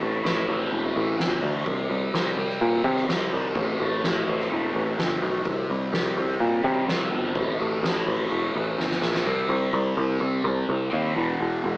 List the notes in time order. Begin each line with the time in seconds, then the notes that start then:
Already playing: A2 C4
0.01 A1 A3, ride
0.24 A1 E4, snare, ride
0.48 A1 C4, ride
0.72 E1 A3, ride
0.95 A1 E3, ride
1.19 G1 C4, snare, ride
1.43 D2 A3, ride
1.66 C2 C3, kick, ride
1.90 C2 G3, ride
2.13 C2 G4, snare, ride
2.37 C2 C4, ride
2.49 snare
2.60 A#2 G3, ride
2.84 C3 D#3, kick, ride
2.97 snare
3.08 C2 C4, snare, ride
3.32 C2 G3, ride
3.55 A1 A2, kick, ride
3.79 A1 A3, ride
4.03 A1 E4, snare, ride
4.27 A1 C4, ride
4.40 snare
4.50 E1 A3, ride
4.73 A1 E3, ride
4.98 G1 C4, snare, ride
5.22 B1 A3, ride
5.45 C2 C3, kick, ride
5.69 C2 G3, ride
5.92 C2 G4, snare, ride
6.17 C2 C4, ride
6.40 A#2 G3, ride
6.63 C3 D#3, kick, ride
6.88 C2 C4, snare, ride
7.12 G1 G3, ride
7.35 A1 A2, kick, ride
7.59 A1 A3, ride
7.83 A1 E4, snare, ride
8.07 A1 C4, ride
8.30 E1 A3, ride
8.55 A1 E3, ride
8.78 G1 C4, snare
8.91 snare
9.02 A#1 A3, snare
9.15 snare
9.24 C2 C3 G3 C4
9.49 C2
9.73 C2
9.97 C2
10.20 C2
10.44 C2
10.69 C2
10.90 D#2 C3 G3 C4
11.14 E1 E2 B2 E3
11.40 E1
11.64 E1